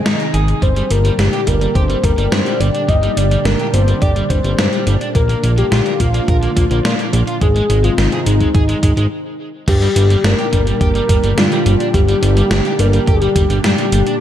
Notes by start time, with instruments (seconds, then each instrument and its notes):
Already playing: analog synth pad C3 D#3 G#3 D#4 G#4
0.06 analog synth bass G#2, clean electric guitar D#4, snare, closed hi-hat
0.20 closed hi-hat
0.34 analog synth bass G#1, clean electric guitar G#4, closed hi-hat
0.48 closed hi-hat
0.62 analog synth bass G1, analog synth pad A#2 D3 G3 D4 G4, overdriven electric guitar G3, soft synth lead C5, kick, closed hi-hat
0.76 overdriven electric guitar G3, closed hi-hat
0.90 analog synth bass G1, overdriven electric guitar G3, soft synth lead A#4, closed hi-hat
1.05 overdriven electric guitar G3, closed hi-hat
1.19 analog synth bass G1, overdriven electric guitar D4, soft synth lead G4, snare, closed hi-hat
1.33 overdriven electric guitar G4, closed hi-hat
1.47 analog synth bass G1, overdriven electric guitar G3, soft synth lead A#4, kick, closed hi-hat
1.61 overdriven electric guitar G3, closed hi-hat
1.75 analog synth bass G1, overdriven electric guitar G4, soft synth lead C5, kick, closed hi-hat
1.89 overdriven electric guitar G3, closed hi-hat
2.04 analog synth bass G1, overdriven electric guitar G3, soft synth lead A#4, kick, closed hi-hat
2.18 analog synth bass G1, overdriven electric guitar G3, closed hi-hat
2.32 analog synth bass G2, overdriven electric guitar D4, soft synth lead C5, snare, closed hi-hat
2.46 overdriven electric guitar G3, closed hi-hat
2.60 analog synth bass G1, overdriven electric guitar G3, soft synth lead D5, closed hi-hat
2.74 overdriven electric guitar D4, closed hi-hat
2.88 analog synth bass G1, overdriven electric guitar G3, soft synth lead D#5, kick, closed hi-hat
3.03 overdriven electric guitar G3, closed hi-hat
3.17 analog synth bass G1, overdriven electric guitar G3, soft synth lead D5, closed hi-hat
3.31 overdriven electric guitar G3, closed hi-hat
3.45 analog synth bass G1, overdriven electric guitar D4, soft synth lead A#4, snare, closed hi-hat
3.59 overdriven electric guitar G4, closed hi-hat
3.73 analog synth bass G1, overdriven electric guitar G3, soft synth lead C5, closed hi-hat
3.88 overdriven electric guitar G3, closed hi-hat
4.02 analog synth bass G1, overdriven electric guitar G4, soft synth lead D5, kick, closed hi-hat
4.16 overdriven electric guitar G3, closed hi-hat
4.30 analog synth bass G1, overdriven electric guitar G3, soft synth lead C5, kick, closed hi-hat
4.44 analog synth bass G1, overdriven electric guitar G3, closed hi-hat
4.58 analog synth bass G2, overdriven electric guitar D4, snare, closed hi-hat
4.73 overdriven electric guitar G3, closed hi-hat
4.87 analog synth bass G1, overdriven electric guitar G3, closed hi-hat
5.01 overdriven electric guitar D4, closed hi-hat
5.15 analog synth bass A#1, analog synth pad D3 F3 F4, overdriven electric guitar A#3, soft synth lead A#4, kick, closed hi-hat
5.29 overdriven electric guitar A#3, closed hi-hat
5.43 analog synth bass A#1, overdriven electric guitar A#3, closed hi-hat
5.57 overdriven electric guitar A#3, soft synth lead G4, closed hi-hat
5.72 analog synth bass A#1, overdriven electric guitar F4, snare, closed hi-hat
5.86 overdriven electric guitar A#4, closed hi-hat
6.00 analog synth bass A#1, overdriven electric guitar A#3, soft synth lead F4, kick, closed hi-hat
6.14 overdriven electric guitar A#3, closed hi-hat
6.28 analog synth bass A#1, overdriven electric guitar A#4, kick, closed hi-hat
6.42 overdriven electric guitar A#3, closed hi-hat
6.56 analog synth bass A#1, overdriven electric guitar A#3, kick, closed hi-hat
6.71 analog synth bass A#1, overdriven electric guitar A#3, closed hi-hat
6.85 analog synth bass A#2, overdriven electric guitar F4, snare, closed hi-hat
6.99 overdriven electric guitar A#3, closed hi-hat
7.13 analog synth bass A#1, overdriven electric guitar A#3, closed hi-hat
7.27 overdriven electric guitar F4, closed hi-hat
7.41 analog synth bass G#1, analog synth pad G#2 C3 D#3 C4 D#4, overdriven electric guitar G#3, soft synth lead G#4, kick, closed hi-hat
7.56 overdriven electric guitar G#3, closed hi-hat
7.70 analog synth bass G#1, overdriven electric guitar G#3, closed hi-hat
7.84 overdriven electric guitar G#3, soft synth lead F4, closed hi-hat
7.98 analog synth bass G#1, overdriven electric guitar D#4, snare, closed hi-hat
8.12 overdriven electric guitar G#4, closed hi-hat
8.26 analog synth bass G#1, overdriven electric guitar G#3, soft synth lead D#4, closed hi-hat
8.40 overdriven electric guitar G#3, kick, closed hi-hat
8.55 analog synth bass G#1, soft synth lead D#4, overdriven electric guitar G#4, kick, closed hi-hat
8.69 overdriven electric guitar G#3, closed hi-hat
8.83 analog synth bass G#1, overdriven electric guitar G#3, kick, closed hi-hat
8.97 analog synth bass G#1, overdriven electric guitar G#3, closed hi-hat
9.68 analog synth bass G1, analog synth pad A#2 D3 G3 D4 G4, overdriven electric guitar G3, soft synth lead G4, kick, closed hi-hat, crash
9.82 overdriven electric guitar G3, closed hi-hat
9.96 analog synth bass G1, overdriven electric guitar G3, closed hi-hat
10.10 overdriven electric guitar G3, closed hi-hat
10.24 analog synth bass G1, overdriven electric guitar D4, soft synth lead A#4, snare, closed hi-hat
10.39 overdriven electric guitar G4, closed hi-hat
10.53 analog synth bass G1, overdriven electric guitar G3, kick, closed hi-hat
10.67 overdriven electric guitar G3, closed hi-hat
10.81 analog synth bass G1, overdriven electric guitar G4, soft synth lead A#4, kick, closed hi-hat
10.95 overdriven electric guitar G3, closed hi-hat
11.09 analog synth bass G1, overdriven electric guitar G3, kick, closed hi-hat
11.23 analog synth bass G1, overdriven electric guitar G3, closed hi-hat
11.38 analog synth bass G2, overdriven electric guitar D4, soft synth lead F4, snare, closed hi-hat
11.52 overdriven electric guitar G3, closed hi-hat
11.66 analog synth bass G1, overdriven electric guitar G3, closed hi-hat
11.80 overdriven electric guitar D4, closed hi-hat
11.94 analog synth bass G1, overdriven electric guitar G3, soft synth lead G4, kick, closed hi-hat
12.09 overdriven electric guitar G3, closed hi-hat
12.22 analog synth bass G1, overdriven electric guitar G3, closed hi-hat
12.37 overdriven electric guitar G3, closed hi-hat
12.51 analog synth bass G1, overdriven electric guitar D4, snare, closed hi-hat
12.65 overdriven electric guitar G4, closed hi-hat
12.79 analog synth bass G1, overdriven electric guitar G3, soft synth lead A#4, closed hi-hat
12.93 overdriven electric guitar G3, closed hi-hat
13.07 analog synth bass G1, soft synth lead G4, overdriven electric guitar G4, kick, closed hi-hat
13.22 overdriven electric guitar G3, closed hi-hat
13.36 analog synth bass G1, overdriven electric guitar G3, kick, closed hi-hat
13.50 analog synth bass G1, overdriven electric guitar G3, closed hi-hat
13.64 analog synth bass G2, overdriven electric guitar D4, soft synth lead G4, snare, closed hi-hat
13.78 overdriven electric guitar G3, closed hi-hat
13.92 analog synth bass G1, overdriven electric guitar G3, closed hi-hat
14.07 overdriven electric guitar D4, closed hi-hat